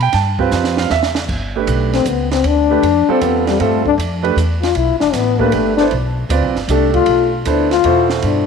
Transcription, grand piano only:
0.03 G5
0.14 A5
0.39 C4 F4 G4 B4
0.78 F5
0.91 E5
1.56 A3 D4 G4 B4
2.70 A3 D4 G4 B4
3.09 G3 C4 F4 A4
3.60 G3 C4 F4 A4
4.22 A3 D4 G4 B4
5.39 A3 D4 G4 B4
5.79 B3 E4 A4 C5
6.30 C4 F4 B4 D5
6.70 A3 D4 G4 A4
7.46 B3 E4 A4 C5
7.85 B2 E4 A4 C5

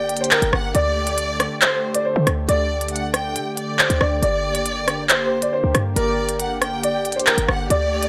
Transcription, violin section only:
Already playing: G5
0.31 G5
0.53 F#5
0.75 D5
1.61 C5
2.48 D5
2.92 F#5
3.14 G5
3.57 D5
4.23 D5
5.10 C5
5.96 D5
6.40 F#5
6.62 G5
7.27 G5
7.48 F#5
7.70 D5

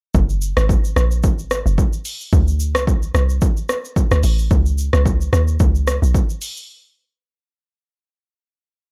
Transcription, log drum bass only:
0.15 F#1
0.57 G#1
0.96 A#1
1.24 G#1
1.66 F#1
2.33 D2
2.75 C2
3.15 C2
4.11 D2
4.24 A1
4.51 C#2
4.93 C#2
5.33 D#2
5.60 C#2
6.02 B1

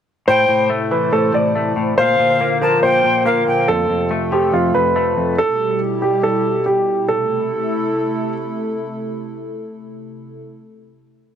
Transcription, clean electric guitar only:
0.28 A2
0.49 A2
0.70 A3
0.91 E3
1.13 A2
1.34 A2
1.55 A3
1.76 A2
1.98 A#2
2.19 A#2
2.41 A#3
2.62 F3
2.83 A#2
3.05 A#2
3.26 A#3
3.47 A#2
3.68 F2
3.89 F2
4.11 A3
4.32 F3
4.53 F2
4.75 F2
4.96 A3
5.17 F2

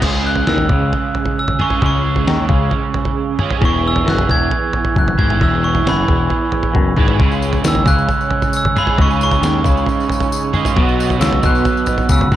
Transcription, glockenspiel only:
0.27 F#6
0.48 E6
1.39 E6
1.61 C#6
1.86 C#6
3.65 C#6
3.88 E6
4.09 F#6
4.31 G#6
4.98 F#6
5.19 G#6
5.43 E6
5.64 C#6
5.89 B5
7.68 E6
7.88 F#6
8.57 E6
8.78 B5
9.01 C#6
9.23 C#6
11.21 E6
11.45 F#6
12.12 E6

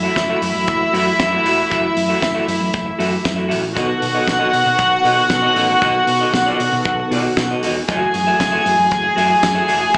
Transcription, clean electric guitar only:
0.03 F#4 A4 E5
0.17 muted clean electric guitar stroke
0.29 F#4 A4 E5
0.42 muted clean electric guitar stroke
0.56 muted clean electric guitar stroke
0.81 muted clean electric guitar stroke
0.93 F#4 A4 E5
1.07 muted clean electric guitar stroke
1.19 muted clean electric guitar stroke
1.31 F#4 A4 E5
1.45 F#4 A4 E5
1.58 muted clean electric guitar stroke
1.70 F#4 A4 E5
1.84 muted clean electric guitar stroke
1.97 muted clean electric guitar stroke
2.09 F#4 A4 E5
2.22 muted clean electric guitar stroke
2.34 F#4 A4 E5
2.47 muted clean electric guitar stroke
2.61 muted clean electric guitar stroke
2.86 muted clean electric guitar stroke
2.99 F#4 A4 E5
3.11 muted clean electric guitar stroke
3.24 muted clean electric guitar stroke
3.36 F#4 A4 E5
3.48 F#4 A4 E5
3.63 muted clean electric guitar stroke
3.74 F#4 A4 D#5
3.88 muted clean electric guitar stroke
4.01 muted clean electric guitar stroke
4.15 F#4 A4 D#5
4.28 muted clean electric guitar stroke
4.39 F#4 A4 D#5
4.52 muted clean electric guitar stroke
4.66 muted clean electric guitar stroke
4.91 muted clean electric guitar stroke
5.04 F#4 A4 D#5
5.17 muted clean electric guitar stroke
5.30 muted clean electric guitar stroke
5.42 F#4 A4 D#5
5.56 F#4 A4 D#5
5.70 muted clean electric guitar stroke
5.82 F#4 A4 D#5
5.95 muted clean electric guitar stroke
6.08 muted clean electric guitar stroke
6.21 F#4 A4 D#5
6.34 muted clean electric guitar stroke
6.46 F#4 A4 D#5
6.60 muted clean electric guitar stroke
6.73 muted clean electric guitar stroke
7.00 muted clean electric guitar stroke
7.11 F#4 A4 D#5
7.25 muted clean electric guitar stroke
7.38 muted clean electric guitar stroke
7.51 F#4 A4 D#5
7.63 F#4 A4 D#5
7.77 muted clean electric guitar stroke
7.88 F#4 A4 E5
8.02 muted clean electric guitar stroke
8.15 muted clean electric guitar stroke
8.27 F#4 A4 E5
8.40 muted clean electric guitar stroke
8.52 F#4 A4 E5
8.65 muted clean electric guitar stroke
8.78 muted clean electric guitar stroke
9.03 muted clean electric guitar stroke
9.16 F#4 A4 E5
9.29 muted clean electric guitar stroke
9.42 muted clean electric guitar stroke
9.55 F#4 A4 E5
9.68 F#4 A4 E5
9.80 muted clean electric guitar stroke
9.93 F#4 A4 E5

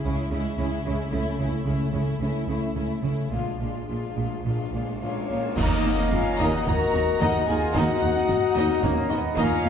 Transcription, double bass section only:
0.05 C#2
0.32 C#2
0.58 C#2
0.85 C#2
1.13 C#2
1.40 C#2
1.67 C#2
1.94 C#2
2.21 C#2
2.47 C#2
2.75 C#2
3.02 C#2
3.31 A#1
3.60 A#1
3.88 A#1
4.17 A#1
4.44 A#1
4.72 A#1
5.01 A#1
5.29 A#1
5.57 D#2
5.85 D#2
6.40 D#2
6.66 D#2
6.94 D#2
7.21 D#2
7.49 D#2
7.75 D#2
8.02 D#2
8.56 D#2
8.82 D#2
9.10 D#2
9.37 D#2
9.64 D#2

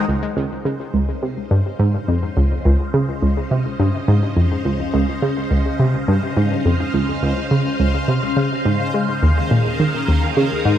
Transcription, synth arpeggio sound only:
0.08 C#2
0.37 C#2
0.65 C#3
0.94 C#2
1.23 C3
1.51 G2
1.79 G#2
2.08 F2
2.37 C#2
2.65 C#2
2.94 C#3
3.22 C#2
3.51 C3
3.80 G2
4.08 G#2
4.37 F2
4.65 C#2
4.94 C#2
5.22 C#3
5.51 C#2
5.80 C3
6.08 G2
6.37 G#2
6.65 F2
6.94 C#2
7.23 C#2
7.51 C#3
7.80 C#2
8.08 C3
8.37 C#3
8.65 G#2
8.94 G#3
9.23 D#2
9.51 A#2
9.80 D#3
10.08 D#2
10.37 C#3
10.65 G#2

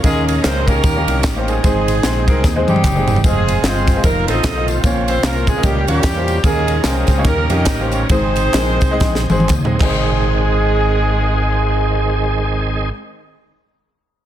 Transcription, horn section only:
0.03 G#3 C#4 G#4
0.26 G#3 G#4
0.43 C4 C5
0.66 A#3 C#4 G4 A#4
1.48 G#3 C4 D#4 G#4
2.69 G3 C4 D#4 G4
3.25 G#3 C4 F4 G#4
3.65 C4 F4 G#4 C5
4.04 A#3 D#4 A#4
4.28 D#4 A4 C5 D#5
4.68 C4 F4 C5
5.07 C4 C5
5.24 A#3 A#4
5.48 G#3 G#4
5.64 G3 A#3 C#4 G4
5.87 G3 A#3 C#4 G4
6.44 G#3 C#4 G#4
6.85 C4 G#4 C5
7.25 A#3 C#4 G4 A#4
7.50 D#4 G4 A#4 D#5
7.93 C#4 C#5
8.10 C4 D#4 G#4 C5
9.80 G#3 G#4

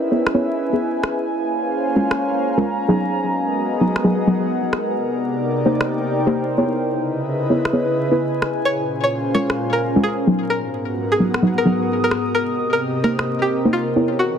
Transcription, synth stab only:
0.11 B3 E4 G#4 C#5
0.34 B3 E4 G#4 C#5
0.73 B3 E4 G#4 B4
1.96 G#3 C#4 F4 A#4
2.57 G#3 C#4 F4 A#4
2.88 F#3 B3 D#4 G#4
3.81 F#3 B3 D#4 G#4
4.04 F#3 B3 D#4 G#4
4.27 F#3 B3 D#4 G#4
5.65 A#3 D#4 G4 C5
6.27 A#3 D#4 G4 C5
6.58 B3 E4 G#4 C#5
7.50 B3 E4 G#4 C#5
7.73 B3 E4 G#4 C#5
8.11 B3 E4 G#4 B4
9.34 G#3 C#4 F4 A#4
9.96 G#3 C#4 F4 A#4
10.27 F#3 B3 D#4 G#4
11.19 F#3 B3 D#4 G#4
11.42 F#3 B3 D#4 G#4
11.65 F#3 B3 D#4 G#4
13.04 A#3 D#4 G4 C5
13.65 A#3 D#4 G4 C5
13.96 B3 E4 G#4 C#5

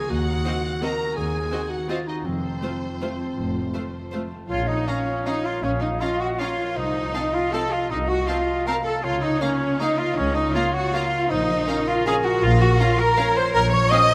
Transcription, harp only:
Already playing: C#3 F3 A#3 C#4 F4
0.10 D#3
0.28 F#4
0.46 C4
0.64 F#4
0.82 D#4
1.00 F#4
1.16 D#3
1.34 C4
1.52 D#4
1.70 F#4
1.89 D#4
2.07 F#4
2.24 F3
2.43 A4
2.62 F4
2.81 A4
3.01 C4
3.19 A4
3.37 F3
3.55 F4
3.74 C4
3.93 A4
4.13 C4
4.31 A4
4.49 A#2
4.68 F3
4.86 C#4
5.07 F4
5.26 A#4
5.44 F4
5.62 A#2
5.81 F3
6.00 C#4
6.20 F4
6.39 A#4
6.58 F4
6.76 C3
6.94 A3
7.14 C4
7.33 F4
7.53 A4
7.72 F4
7.90 C3
8.08 A3
8.27 C4
8.47 F4
8.66 A4
8.86 F4
9.03 C#3
9.22 C#4
9.41 A#3
9.60 F4
9.80 A#4
9.99 F4
10.17 C#3
10.35 C#4
10.54 A#3
10.74 F4
10.94 A#4
11.12 F4
11.30 A#2
11.49 F3
11.68 C#4
11.87 F4
12.06 A#4
12.24 F4
12.42 A#2
12.60 F3
12.79 C#4
12.98 F4
13.17 A#4
13.36 F4
13.54 A#2
13.72 F3
13.91 C#4
14.11 F4

